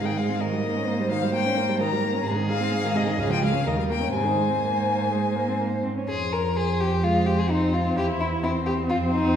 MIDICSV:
0, 0, Header, 1, 5, 480
1, 0, Start_track
1, 0, Key_signature, -4, "major"
1, 0, Tempo, 466200
1, 418, Time_signature, 4, 2, 24, 8
1, 3293, Tempo, 481155
1, 6172, Key_signature, -4, "minor"
1, 6173, Tempo, 470588
1, 9514, End_track
2, 0, Start_track
2, 0, Title_t, "Violin"
2, 0, Program_c, 0, 40
2, 53, Note_on_c, 0, 79, 50
2, 173, Note_on_c, 0, 77, 54
2, 188, Note_off_c, 0, 79, 0
2, 416, Note_on_c, 0, 75, 57
2, 431, Note_off_c, 0, 77, 0
2, 1134, Note_off_c, 0, 75, 0
2, 1140, Note_on_c, 0, 77, 62
2, 1374, Note_off_c, 0, 77, 0
2, 1385, Note_on_c, 0, 79, 70
2, 1849, Note_off_c, 0, 79, 0
2, 1855, Note_on_c, 0, 82, 65
2, 2325, Note_off_c, 0, 82, 0
2, 2580, Note_on_c, 0, 77, 77
2, 3052, Note_on_c, 0, 75, 62
2, 3068, Note_off_c, 0, 77, 0
2, 3290, Note_on_c, 0, 77, 73
2, 3305, Note_off_c, 0, 75, 0
2, 3408, Note_off_c, 0, 77, 0
2, 3419, Note_on_c, 0, 79, 64
2, 3526, Note_off_c, 0, 79, 0
2, 3532, Note_on_c, 0, 77, 60
2, 3766, Note_on_c, 0, 75, 58
2, 3781, Note_off_c, 0, 77, 0
2, 3884, Note_off_c, 0, 75, 0
2, 3890, Note_on_c, 0, 77, 50
2, 3936, Note_off_c, 0, 77, 0
2, 4001, Note_on_c, 0, 79, 59
2, 4227, Note_off_c, 0, 79, 0
2, 4233, Note_on_c, 0, 80, 59
2, 5657, Note_off_c, 0, 80, 0
2, 6166, Note_on_c, 0, 72, 41
2, 6619, Note_off_c, 0, 72, 0
2, 6656, Note_on_c, 0, 72, 42
2, 7130, Note_off_c, 0, 72, 0
2, 7135, Note_on_c, 0, 72, 44
2, 8073, Note_off_c, 0, 72, 0
2, 8094, Note_on_c, 0, 72, 41
2, 8561, Note_off_c, 0, 72, 0
2, 8574, Note_on_c, 0, 72, 44
2, 9043, Note_off_c, 0, 72, 0
2, 9050, Note_on_c, 0, 72, 47
2, 9514, Note_off_c, 0, 72, 0
2, 9514, End_track
3, 0, Start_track
3, 0, Title_t, "Violin"
3, 0, Program_c, 1, 40
3, 0, Note_on_c, 1, 68, 44
3, 424, Note_on_c, 1, 70, 46
3, 440, Note_off_c, 1, 68, 0
3, 896, Note_off_c, 1, 70, 0
3, 902, Note_on_c, 1, 72, 52
3, 1856, Note_on_c, 1, 70, 54
3, 1872, Note_off_c, 1, 72, 0
3, 2328, Note_off_c, 1, 70, 0
3, 2334, Note_on_c, 1, 68, 62
3, 3760, Note_on_c, 1, 70, 49
3, 3775, Note_off_c, 1, 68, 0
3, 4240, Note_off_c, 1, 70, 0
3, 4247, Note_on_c, 1, 72, 46
3, 5901, Note_off_c, 1, 72, 0
3, 6173, Note_on_c, 1, 68, 64
3, 6420, Note_on_c, 1, 70, 56
3, 6435, Note_off_c, 1, 68, 0
3, 6664, Note_on_c, 1, 68, 60
3, 6679, Note_off_c, 1, 70, 0
3, 6904, Note_on_c, 1, 67, 59
3, 6920, Note_off_c, 1, 68, 0
3, 7143, Note_on_c, 1, 65, 65
3, 7158, Note_off_c, 1, 67, 0
3, 7373, Note_on_c, 1, 67, 58
3, 7388, Note_off_c, 1, 65, 0
3, 7504, Note_on_c, 1, 68, 56
3, 7520, Note_off_c, 1, 67, 0
3, 7616, Note_on_c, 1, 63, 62
3, 7631, Note_off_c, 1, 68, 0
3, 7857, Note_on_c, 1, 65, 51
3, 7872, Note_off_c, 1, 63, 0
3, 8092, Note_off_c, 1, 65, 0
3, 8098, Note_on_c, 1, 67, 65
3, 8179, Note_off_c, 1, 67, 0
3, 8334, Note_on_c, 1, 64, 54
3, 8416, Note_off_c, 1, 64, 0
3, 8571, Note_on_c, 1, 64, 59
3, 8653, Note_off_c, 1, 64, 0
3, 8802, Note_on_c, 1, 67, 57
3, 8884, Note_off_c, 1, 67, 0
3, 9041, Note_on_c, 1, 65, 65
3, 9123, Note_off_c, 1, 65, 0
3, 9280, Note_on_c, 1, 63, 56
3, 9514, Note_off_c, 1, 63, 0
3, 9514, End_track
4, 0, Start_track
4, 0, Title_t, "Viola"
4, 0, Program_c, 2, 41
4, 53, Note_on_c, 2, 51, 37
4, 183, Note_on_c, 2, 56, 38
4, 198, Note_off_c, 2, 51, 0
4, 300, Note_on_c, 2, 60, 38
4, 315, Note_off_c, 2, 56, 0
4, 416, Note_off_c, 2, 60, 0
4, 422, Note_on_c, 2, 51, 41
4, 546, Note_on_c, 2, 55, 37
4, 561, Note_off_c, 2, 51, 0
4, 671, Note_on_c, 2, 58, 39
4, 686, Note_off_c, 2, 55, 0
4, 793, Note_on_c, 2, 61, 41
4, 808, Note_off_c, 2, 58, 0
4, 906, Note_on_c, 2, 58, 41
4, 921, Note_off_c, 2, 61, 0
4, 1028, Note_on_c, 2, 55, 43
4, 1044, Note_off_c, 2, 58, 0
4, 1144, Note_on_c, 2, 51, 42
4, 1160, Note_off_c, 2, 55, 0
4, 1266, Note_on_c, 2, 55, 42
4, 1281, Note_off_c, 2, 51, 0
4, 1368, Note_off_c, 2, 55, 0
4, 1374, Note_on_c, 2, 58, 45
4, 1498, Note_on_c, 2, 61, 44
4, 1514, Note_off_c, 2, 58, 0
4, 1617, Note_on_c, 2, 58, 45
4, 1633, Note_off_c, 2, 61, 0
4, 1735, Note_on_c, 2, 55, 43
4, 1750, Note_off_c, 2, 58, 0
4, 1860, Note_on_c, 2, 51, 48
4, 1875, Note_off_c, 2, 55, 0
4, 1973, Note_on_c, 2, 55, 46
4, 1988, Note_off_c, 2, 51, 0
4, 2099, Note_on_c, 2, 58, 47
4, 2114, Note_off_c, 2, 55, 0
4, 2214, Note_on_c, 2, 61, 48
4, 2230, Note_off_c, 2, 58, 0
4, 2328, Note_off_c, 2, 61, 0
4, 2334, Note_on_c, 2, 48, 53
4, 2449, Note_on_c, 2, 51, 47
4, 2464, Note_off_c, 2, 48, 0
4, 2572, Note_on_c, 2, 56, 49
4, 2588, Note_off_c, 2, 51, 0
4, 2681, Note_on_c, 2, 60, 46
4, 2697, Note_off_c, 2, 56, 0
4, 2798, Note_on_c, 2, 56, 44
4, 2813, Note_off_c, 2, 60, 0
4, 2923, Note_on_c, 2, 51, 49
4, 2939, Note_off_c, 2, 56, 0
4, 3042, Note_on_c, 2, 48, 46
4, 3057, Note_off_c, 2, 51, 0
4, 3155, Note_on_c, 2, 51, 45
4, 3170, Note_off_c, 2, 48, 0
4, 3271, Note_off_c, 2, 51, 0
4, 3277, Note_on_c, 2, 49, 49
4, 3393, Note_on_c, 2, 53, 46
4, 3408, Note_off_c, 2, 49, 0
4, 3517, Note_on_c, 2, 56, 44
4, 3531, Note_off_c, 2, 53, 0
4, 3631, Note_on_c, 2, 61, 41
4, 3646, Note_off_c, 2, 56, 0
4, 3741, Note_off_c, 2, 61, 0
4, 3747, Note_on_c, 2, 51, 43
4, 3866, Note_on_c, 2, 55, 41
4, 3881, Note_off_c, 2, 51, 0
4, 3987, Note_on_c, 2, 58, 39
4, 4002, Note_off_c, 2, 55, 0
4, 4106, Note_on_c, 2, 61, 38
4, 4121, Note_off_c, 2, 58, 0
4, 4220, Note_off_c, 2, 61, 0
4, 4226, Note_on_c, 2, 48, 39
4, 4349, Note_on_c, 2, 51, 34
4, 4364, Note_off_c, 2, 48, 0
4, 4466, Note_on_c, 2, 56, 36
4, 4481, Note_off_c, 2, 51, 0
4, 4591, Note_on_c, 2, 60, 34
4, 4606, Note_off_c, 2, 56, 0
4, 4706, Note_off_c, 2, 60, 0
4, 4712, Note_on_c, 2, 58, 44
4, 5202, Note_on_c, 2, 56, 38
4, 5217, Note_off_c, 2, 58, 0
4, 5441, Note_on_c, 2, 58, 38
4, 5456, Note_off_c, 2, 56, 0
4, 5570, Note_on_c, 2, 60, 38
4, 5585, Note_off_c, 2, 58, 0
4, 5683, Note_off_c, 2, 60, 0
4, 5689, Note_on_c, 2, 58, 43
4, 5769, Note_off_c, 2, 58, 0
4, 5924, Note_on_c, 2, 60, 39
4, 6046, Note_off_c, 2, 60, 0
4, 6055, Note_on_c, 2, 61, 37
4, 6170, Note_off_c, 2, 61, 0
4, 7130, Note_on_c, 2, 56, 43
4, 7580, Note_off_c, 2, 56, 0
4, 7610, Note_on_c, 2, 60, 45
4, 8090, Note_on_c, 2, 64, 53
4, 8105, Note_off_c, 2, 60, 0
4, 8565, Note_on_c, 2, 60, 52
4, 8580, Note_off_c, 2, 64, 0
4, 9514, Note_off_c, 2, 60, 0
4, 9514, End_track
5, 0, Start_track
5, 0, Title_t, "Cello"
5, 0, Program_c, 3, 42
5, 0, Note_on_c, 3, 44, 43
5, 2293, Note_off_c, 3, 44, 0
5, 2334, Note_on_c, 3, 44, 56
5, 3286, Note_on_c, 3, 37, 52
5, 3302, Note_off_c, 3, 44, 0
5, 3755, Note_on_c, 3, 39, 49
5, 3770, Note_off_c, 3, 37, 0
5, 4234, Note_off_c, 3, 39, 0
5, 4240, Note_on_c, 3, 44, 47
5, 5933, Note_off_c, 3, 44, 0
5, 6168, Note_on_c, 3, 41, 46
5, 8052, Note_off_c, 3, 41, 0
5, 8089, Note_on_c, 3, 40, 48
5, 9050, Note_on_c, 3, 41, 44
5, 9065, Note_off_c, 3, 40, 0
5, 9514, Note_off_c, 3, 41, 0
5, 9514, End_track
0, 0, End_of_file